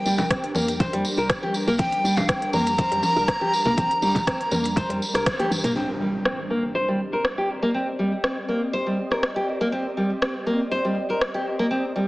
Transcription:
Already playing: ambient pad G3 D4 G4 A#4, flute G5
0.06 fm bass G1, nylon-string guitar G3, tambourine
0.18 tambourine, high conga, low conga
0.30 nylon-string guitar C4, kick, cross-stick, closed hi-hat
0.44 closed hi-hat
0.55 fm bass F2, nylon-string guitar A#3, tambourine, high conga
0.68 closed hi-hat, tambourine
0.80 nylon-string guitar C5, kick, closed hi-hat, high conga, low conga
0.93 fm bass F2, nylon-string guitar G3, closed hi-hat
1.05 tambourine
1.17 fm bass C2, nylon-string guitar A#4, tambourine
1.30 kick, cross-stick, closed hi-hat, tambourine
1.43 nylon-string guitar G4, high conga
1.54 tambourine
1.67 fm bass C2, nylon-string guitar A#3, tambourine
1.79 fm bass C2, nylon-string guitar C4, flute G5, kick, closed hi-hat, tambourine, high conga
1.92 closed hi-hat
2.04 fm bass G1, nylon-string guitar G3, tambourine
2.17 flute F5, tambourine, high conga, low conga
2.28 nylon-string guitar C4, flute G5, kick, cross-stick, closed hi-hat
2.42 closed hi-hat
2.53 fm bass F2, nylon-string guitar A#3, flute A#5, tambourine, high conga
2.67 closed hi-hat, tambourine
2.78 nylon-string guitar C5, kick, closed hi-hat, tambourine, high conga
2.92 fm bass F2, nylon-string guitar G3, closed hi-hat
3.03 tambourine, high conga
3.16 fm bass C2, nylon-string guitar A#4, tambourine
3.28 kick, cross-stick, closed hi-hat
3.41 nylon-string guitar G4, high conga
3.53 tambourine
3.65 fm bass C2, nylon-string guitar A#3, tambourine, low conga
3.77 fm bass C2, nylon-string guitar C4, kick, closed hi-hat, tambourine, high conga
3.91 closed hi-hat
4.02 fm bass G1, nylon-string guitar G3, tambourine
4.15 kick, closed hi-hat, tambourine, high conga, low conga
4.27 nylon-string guitar C4, kick, cross-stick, closed hi-hat, tambourine
4.41 closed hi-hat
4.51 fm bass F2, nylon-string guitar A#3, tambourine, high conga
4.64 closed hi-hat, tambourine
4.76 nylon-string guitar C5, kick, closed hi-hat, high conga, low conga
4.89 fm bass F2, nylon-string guitar G3, closed hi-hat
5.02 tambourine
5.14 fm bass C2, nylon-string guitar A#4, cross-stick, closed hi-hat, tambourine
5.26 kick, cross-stick, closed hi-hat, tambourine
5.39 nylon-string guitar G4, closed hi-hat, high tom, high conga
5.50 fm bass G1, mid tom, tambourine
5.64 fm bass G1, nylon-string guitar A#3, closed hi-hat, mid tom, tambourine
5.76 nylon-string guitar C4, ambient pad C4 G4 D5 D#5, impact
6.00 nylon-string guitar G3
6.25 nylon-string guitar C4, cross-stick
6.50 nylon-string guitar A#3
6.75 nylon-string guitar C5
6.88 nylon-string guitar G3
7.13 nylon-string guitar A#4
7.25 cross-stick
7.38 nylon-string guitar G4
7.62 nylon-string guitar A#3
7.74 nylon-string guitar C4
7.99 nylon-string guitar G3
8.24 nylon-string guitar C4, cross-stick
8.48 nylon-string guitar A#3
8.73 nylon-string guitar C5
8.86 nylon-string guitar G3
9.11 nylon-string guitar A#4, cross-stick
9.23 cross-stick
9.36 nylon-string guitar G4
9.61 nylon-string guitar A#3
9.72 nylon-string guitar C4
9.97 nylon-string guitar G3
10.22 nylon-string guitar C4, cross-stick
10.46 nylon-string guitar A#3
10.71 nylon-string guitar C5
10.85 nylon-string guitar G3
11.10 nylon-string guitar A#4
11.21 cross-stick
11.34 nylon-string guitar G4
11.59 nylon-string guitar A#3
11.71 nylon-string guitar C4
11.96 nylon-string guitar G3

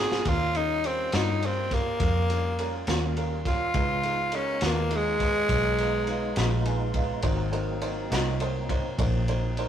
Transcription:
Already playing: fingered electric bass G#2, upright piano C4 D#4 F#4 A#4, tonewheel organ C4 D#4 F#4 A#4
0.00 tenor saxophone G#4
0.11 snare
0.25 fingered electric bass D#2, tonewheel organ G3 A#3 C#4 F4, upright piano C#4 F4 G4 A#4, tenor saxophone F4, kick, ride
0.55 upright piano C#4 F4 G4 A#4, tenor saxophone D#4, ride
0.84 tenor saxophone C4, upright piano C#4 F4 G4 A#4, ride
1.12 fingered electric bass G2, upright piano C#4 F4 G4 A#4, tenor saxophone D#4, snare, ride
1.43 tenor saxophone C4, upright piano C#4 F4 G4 A#4, ride
1.71 tenor saxophone A#3, upright piano C#4 F4 G4 A#4, kick, snare, ride
2.00 fingered electric bass F2, upright piano C#4 F4 G4 A#4, kick, ride
2.30 upright piano C#4 F4 G4 A#4, ride
2.59 upright piano C#4 F4 G4 A#4, ride
2.87 fingered electric bass D#2, upright piano C#4 F4 G4 A#4, snare, ride
3.17 upright piano C#4 F4 G4 A#4, ride
3.45 upright piano C#4 F4 G4 A#4, tenor saxophone F4, kick, snare, ride
3.74 fingered electric bass C#2, tonewheel organ G#3 B3 D#4 F4, upright piano D#4 F4 G#4 B4, kick, ride
4.03 upright piano D#4 F4 G#4 B4, ride
4.32 tenor saxophone C#4, upright piano D#4 F4 G#4 A#4, ride
4.61 fingered electric bass D#2, upright piano D#4 F4 G#4 B4, snare, ride
4.66 tenor saxophone A#3
4.90 upright piano D#4 F4 G#4 B4, ride
4.96 tenor saxophone G#3
5.20 upright piano D#4 F4 G#4 B4, kick, snare, ride
5.49 fingered electric bass B1, upright piano D#4 F4 G#4 B4, kick, ride
5.78 upright piano D#4 F4 G#4 B4, ride
6.07 upright piano D#4 F4 G#4 B4, ride
6.36 fingered electric bass A#1, upright piano D#4 F4 G#4 B4, snare, ride
6.65 upright piano D#4 F4 G#4 B4 G#5, ride
6.94 upright piano D#4 F4 G#4 B4 F5, kick, ride
7.22 fingered electric bass G#1, tonewheel organ F#3 A#3 C4 D#4, upright piano D#4 F#4 A#4 C5, kick, ride
7.52 upright piano D#4 F#4 A#4 C5, ride
7.81 upright piano D#4 F#4 A#4 C5, ride
8.11 fingered electric bass C2, upright piano D#4 F#4 A#4 D#5, snare, ride
8.40 upright piano D#4 F#4 A#4 C5, ride
8.69 upright piano D#4 F#4 A#4 C5, kick, ride
8.99 fingered electric bass A#1, upright piano D#4 F#4 A#4 C5, kick, ride
9.28 upright piano D#4 F#4 A#4 C5, ride
9.57 upright piano D#4 F#4 A#4 C5, ride

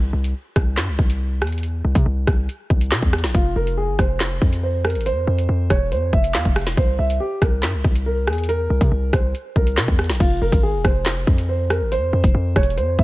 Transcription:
Already playing: 808-style bass C2
0.13 808-style bass C2
0.24 closed hi-hat
0.56 808-style bass C2, kick, cross-stick, closed hi-hat
0.77 808-style bass G2, snare, clap, closed hi-hat
0.88 808-style bass C2
0.99 808-style bass C2, kick
1.10 closed hi-hat
1.42 808-style bass E2, cross-stick, closed hi-hat
1.47 closed hi-hat
1.52 closed hi-hat
1.58 closed hi-hat
1.63 closed hi-hat
1.85 808-style bass C2
1.95 808-style bass C3, kick, closed hi-hat
2.06 808-style bass C2
2.27 808-style bass C2, kick, cross-stick, closed hi-hat
2.49 closed hi-hat
2.70 808-style bass C2, kick
2.81 closed hi-hat
2.92 808-style bass C3, snare, clap
3.02 808-style bass E2, kick
3.13 cross-stick, closed hi-hat
3.18 closed hi-hat
3.24 808-style bass A#1, snare, closed hi-hat
3.29 closed hi-hat
3.35 808-style bass F1, grand piano F4, kick, closed hi-hat
3.56 808-style bass F1, grand piano A#4
3.67 closed hi-hat
3.77 grand piano G#4
3.88 808-style bass G1
3.99 808-style bass F1, grand piano C5, kick, cross-stick, closed hi-hat
4.20 snare, clap, closed hi-hat
4.42 808-style bass F2, kick
4.53 closed hi-hat
4.63 grand piano C5
4.85 grand piano A#4, cross-stick, closed hi-hat
4.90 closed hi-hat
4.95 808-style bass G#1, closed hi-hat
5.01 closed hi-hat
5.06 grand piano C5, closed hi-hat
5.11 808-style bass F2
5.27 808-style bass F2
5.38 closed hi-hat
5.49 808-style bass F2
5.70 808-style bass E1, grand piano C#5, kick, cross-stick, closed hi-hat
5.92 808-style bass F2, grand piano C5, closed hi-hat
6.13 808-style bass F1, grand piano E5, kick
6.24 closed hi-hat
6.34 808-style bass F2, grand piano F5, snare, clap
6.45 808-style bass F1, kick
6.56 cross-stick, closed hi-hat
6.61 closed hi-hat
6.67 808-style bass E1, snare, closed hi-hat
6.72 closed hi-hat
6.77 808-style bass C2, grand piano C5, kick, closed hi-hat
6.99 808-style bass C2, grand piano E5
7.10 closed hi-hat
7.20 grand piano G4
7.42 808-style bass C2, grand piano A#4, kick, cross-stick, closed hi-hat
7.63 808-style bass G2, snare, clap, closed hi-hat
7.74 808-style bass C2
7.84 808-style bass C2, kick
7.95 closed hi-hat
8.06 grand piano A#4
8.27 808-style bass E2, grand piano G#4, cross-stick, closed hi-hat
8.33 closed hi-hat
8.38 closed hi-hat
8.43 closed hi-hat
8.49 grand piano A#4, closed hi-hat
8.70 808-style bass C2
8.81 808-style bass C3, kick, closed hi-hat
8.92 808-style bass C2
9.13 808-style bass C2, grand piano C5, kick, cross-stick, closed hi-hat
9.35 closed hi-hat
9.56 808-style bass C2, grand piano A#4, kick
9.67 closed hi-hat
9.77 808-style bass C3, snare, clap
9.88 808-style bass E2, kick
9.99 cross-stick, closed hi-hat
10.04 closed hi-hat
10.10 808-style bass A#1, snare, closed hi-hat
10.15 closed hi-hat
10.20 808-style bass F1, grand piano F4, kick, closed hi-hat, crash
10.42 808-style bass F1, grand piano A#4
10.52 808-style bass G#1, kick, closed hi-hat
10.63 grand piano G#4
10.74 808-style bass E1
10.85 808-style bass F1, grand piano C5, kick, cross-stick, closed hi-hat
11.06 snare, clap, closed hi-hat
11.27 808-style bass F2, kick
11.38 closed hi-hat
11.49 grand piano C5
11.70 grand piano A#4, cross-stick, closed hi-hat
11.81 808-style bass G#1
11.92 grand piano C5, closed hi-hat
11.97 808-style bass F2
12.13 808-style bass F2
12.24 808-style bass F1, kick, closed hi-hat
12.35 808-style bass F2
12.56 808-style bass E1, grand piano C#5, kick, cross-stick, closed hi-hat
12.63 closed hi-hat
12.70 closed hi-hat
12.77 808-style bass F2, grand piano C5, closed hi-hat
12.99 808-style bass F1, grand piano E5, kick

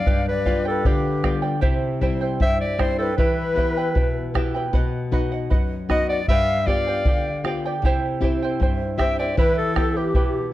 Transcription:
Already playing: clarinet D5, quena F5
0.06 nylon-string guitar G2, charango G4 B4 D5 F5 G5, bombo low
0.28 clarinet B4, quena D5
0.45 nylon-string guitar G3 B3 F4, charango G4 D5 F5 G5, bombo low
0.65 charango G4 D5 G5, clarinet A4
0.69 quena B4
0.85 nylon-string guitar D3, charango G4 D5 F5 G5, clarinet G4, quena B4, bombo low
1.24 nylon-string guitar G3 B3 F4, charango G4 D5 F5 G5, bombo rim, bombo low
1.42 charango G4 D5 G5
1.61 nylon-string guitar C3, charango E4 G4 C5 E5 G5, bombo low
2.01 nylon-string guitar G3 C4 E4, charango E4 C5 E5 G5, bombo low
2.21 charango E4 C5 G5
2.40 nylon-string guitar G2, charango E4 C5 E5 G5, clarinet E5, bombo low
2.44 quena G5
2.61 clarinet D5, quena E5
2.78 nylon-string guitar G3 C4 E4, charango E4 C5 E5 G5, clarinet C5, quena D5, bombo rim, bombo low
2.98 charango E4 C5 G5, clarinet A4, quena B4
3.17 nylon-string guitar E3, charango E4 G4 B4 E5 G5, clarinet B4, quena B4, bombo low
3.55 nylon-string guitar B3 E4 G4, charango E4 B4 E5 G5, bombo low
3.77 charango E4 B4 G5
3.95 nylon-string guitar B2, charango E4 B4 E5 G5, bombo low
4.34 nylon-string guitar B3 E4 G4, charango E4 B4 E5 G5, bombo rim, bombo low
4.54 charango E4 B4 G5
4.73 nylon-string guitar B2, charango B4 D#5 F#5, bombo low
5.12 nylon-string guitar B3 D#4 F#4, charango B4 D#5 F#5, bombo low
5.32 charango D#5 F#5
5.50 nylon-string guitar F#2, charango B4 D#5 F#5, bombo low
5.89 nylon-string guitar B3 D#4 F#4, charango B4 D#5 F#5, clarinet D#5, quena D#5, bombo rim, bombo low
6.09 clarinet D5, quena D5, charango D#5 F#5
6.28 nylon-string guitar G2, charango G4 B4 D5 G5, clarinet E5, quena F5, bombo low
6.67 nylon-string guitar B3 F4 G4, charango G4 D5 F5 G5, clarinet D5, quena F5, bombo low
6.88 charango G4 D5 G5
7.05 nylon-string guitar D3, charango G4 D5 F5 G5, bombo low
7.44 nylon-string guitar B3 F4 G4, charango G4 D5 F5 G5, bombo rim
7.66 charango G4 D5 G5
7.82 nylon-string guitar C3, charango E4 G4 C5 E5 G5, bombo low
8.21 nylon-string guitar C4 E4 G4, charango E4 C5 E5 G5, bombo low
8.43 charango E4 C5 G5
8.60 nylon-string guitar G2, charango E4 C5 E5 G5, bombo low
8.98 nylon-string guitar C4 E4 G4, charango E4 C5 E5 G5, clarinet E5, quena G5, bombo rim, bombo low
9.18 charango E4 C5 G5, clarinet D5, quena E5
9.37 nylon-string guitar E3, charango E4 G4 B4 E5 G5, clarinet B4, quena B4, bombo low
9.57 quena A4, clarinet A4
9.75 nylon-string guitar B3 E4 G4, charango E4 B4 E5 G5, bombo rim, bombo low
9.96 charango E4 B4 G5, clarinet G4, quena G4
10.14 nylon-string guitar B2, charango E4 B4 E5 G5, bombo low

